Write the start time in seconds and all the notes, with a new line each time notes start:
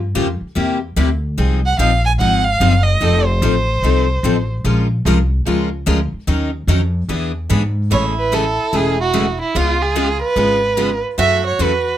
Already playing: G2
0.15 F2 C#3 F3 A#3 F4 G4
0.41 muted upright bass stroke
0.55 E2 C3 G3 A#3 E4 G4
0.96 D2 C3 G3 A#3 E4 G4
1.38 C2 F3 C4 D#4 G#4
1.66 F#5
1.78 A#1 F3 C4 D#4 G#4 F5
2.06 G#5
2.19 G#1 F3 C4 D#4 G#4 F#5
2.44 F5
2.60 F#1 F3 C4 D#4 G#4
2.83 D#5
3.01 F1 F3 C4 D#4 A4
3.26 C5
3.42 A1 F3 C4 D#4 A4
3.83 C2 F3 C4 D#4 A4
4.23 A1 F3 C4 D#4 A4
4.64 A#1 F3 G#3 C#4 F4 A#4
5.05 C2 F3 G#3 C#4 F4 A#4
5.46 C#2 F3 G#3 C#4 F4 A#4
5.86 D2 F3 G#3 C#4 F4 A#4
6.13 muted upright bass stroke
6.27 D#2 D#3 F#3 C#4 D#4 A#4
6.67 F2 D#3 F#3 C#4 D#4 A#4
7.09 E2 E3 B3 D4 G#4 B4
7.50 G#2 E3 B3 D4 G#4 B4
7.91 A1 C#3 E3 G#3 A3 C#4 E4 G#4 A4 C#5
8.19 B4
8.32 C#3 E3 G#3 A3 C#4 E4 G#4 A4
8.73 E1 C#3 E3 G#3 A3 C#4 E4 G#4 A4
9.01 F#4
9.13 C#3 E3 G#3 A3 C#4 E4 G#4 A4
9.42 E4
9.55 C#2 C#3 G#3 B3 F4 G#4
9.82 G#4
9.96 C#3 G#3 B3 F4 G#4
10.22 B4
10.36 G#1 C#3 G#3 B3 F4 G#4
10.77 C#3 G#3 B3 F4 G#4
11.18 F#2 C#3 E3 F#3 A3 C#4 E4 F#4 A4 E5
11.47 C#5
11.59 E2 C#3 E3 F#3 A3 C#4 E4 F#4 A4 B4